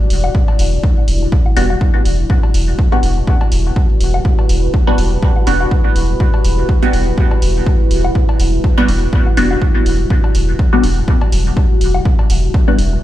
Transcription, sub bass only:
0.10 0.29 E1 medium
0.59 0.78 E1 loud
1.08 1.27 E1 medium
1.57 1.76 E1 medium
2.05 2.24 E1 loud
2.54 2.73 E1 loud
3.03 3.22 E1 loud
3.52 3.71 E1 medium
4.01 4.19 E1 medium
4.49 4.68 E1 loud
4.98 5.17 E1 loud
5.47 5.66 E1 medium
5.96 6.15 E1 medium
6.45 6.63 E1 loud
6.93 7.12 E1 medium
7.42 7.61 E1 medium
7.91 8.10 E1 medium
8.40 8.59 E1 loud
8.88 9.07 E1 medium
9.37 9.56 E1 loud
9.86 10.05 E1 loud
10.35 10.54 E1 loud
10.84 11.02 E1 loud
11.32 11.51 E1 loud
11.81 12.00 E1 medium
12.30 12.49 E1 loud
12.79 12.98 E1 loud

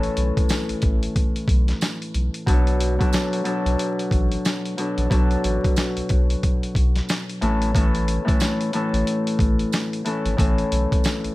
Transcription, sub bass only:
0.17 0.32 B1 loud
0.69 0.75 A1 medium
0.83 1.08 A1 loud
1.48 1.74 B1 medium
2.15 2.29 B1 medium
2.47 2.99 B1 loud
3.66 3.76 B1 loud
4.11 4.37 A1 medium
4.98 5.08 A#1 medium
5.11 5.37 B1 loud
5.44 5.59 A1 medium
5.96 6.02 B1 medium
6.10 6.36 B1 medium
6.75 7.01 B1 medium
7.42 8.19 A1 loud
8.93 9.04 A1 medium
9.39 9.65 A1 medium
10.25 10.36 G#1 medium
10.39 10.64 A1 loud
10.72 10.87 B1 loud
11.24 11.30 A1 medium

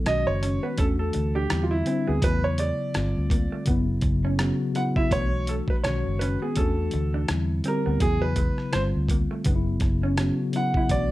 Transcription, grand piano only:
0.07 0.25 D#5 medium
0.27 0.64 C#5 medium
0.63 0.77 B4 medium
0.79 0.84 A4 medium
0.99 1.36 A4 medium
1.36 1.64 G4 medium
1.63 1.71 F4 medium
1.71 2.08 E4 medium
2.08 2.23 G#4 medium
2.24 2.44 B4 loud
2.44 2.59 C#5 medium
2.59 3.63 D5 medium
4.76 4.81 F#5 medium
4.96 5.12 E5 medium
5.12 5.49 C#5 loud
5.49 5.54 A4 medium
5.70 5.75 B4 medium
5.84 6.21 C#5 medium
6.19 6.39 B4 medium
6.42 6.57 G#4 medium
6.57 7.25 A4 medium
7.68 8.00 A#4 medium
8.02 8.20 G#4 medium
8.22 8.74 B4 medium
8.72 8.81 C5 medium
10.56 10.92 F#5 medium
10.91 11.12 D5 loud

